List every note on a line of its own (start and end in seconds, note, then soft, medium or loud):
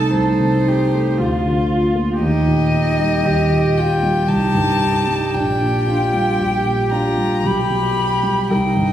0.00 0.11 C2 soft
0.00 0.40 C3 soft
0.00 0.29 A3 soft
0.00 0.67 D#4 soft
0.00 1.20 D#4 soft
0.00 0.11 A4 medium
0.00 0.12 A5 medium
0.11 1.15 C2 soft
0.11 0.69 A4 medium
0.11 1.69 C5 medium
0.40 0.82 C3 soft
0.67 1.08 D#4 soft
0.67 1.20 G4 soft
0.93 1.19 A3 soft
1.18 2.19 D2 soft
1.18 2.21 F4 medium
1.18 2.21 F4 soft
1.45 1.86 D3 soft
1.71 2.12 F4 soft
1.95 2.21 A#3 soft
2.21 3.24 D#2 soft
2.21 3.27 D#4 medium
2.21 7.42 G4 soft
2.21 3.79 D#5 medium
2.48 2.89 A#2 soft
2.74 3.15 D#4 soft
2.99 3.41 G3 soft
3.25 4.26 D#2 soft
3.25 3.80 G4 soft
3.52 3.93 A#2 soft
3.77 4.29 F4 soft
3.77 4.30 G5 medium
4.03 4.29 G3 soft
4.29 5.32 C2 soft
4.29 5.38 D#4 medium
4.29 5.36 A5 medium
4.55 4.98 G2 soft
4.82 5.25 D#4 soft
5.07 5.35 G3 soft
5.35 6.38 A#1 soft
5.35 5.89 D4 soft
5.35 6.92 G5 medium
5.62 6.04 A#2 soft
5.87 6.30 D4 soft
5.87 6.44 F4 soft
6.14 6.56 G3 soft
6.40 7.41 A#1 soft
6.40 6.95 G4 soft
6.66 7.08 A#2 soft
6.92 7.34 D4 soft
6.92 7.46 F4 soft
6.92 7.47 A#5 medium
7.17 7.44 G3 soft
7.44 8.48 B1 soft
7.44 8.52 G4 soft
7.44 8.52 B5 medium
7.70 8.13 B2 soft
7.96 8.40 F4 soft
8.23 8.51 G3 soft
8.50 8.93 C2 soft
8.50 8.93 D#4 soft
8.50 8.93 A#4 soft
8.50 8.93 G5 medium
8.77 8.93 G2 soft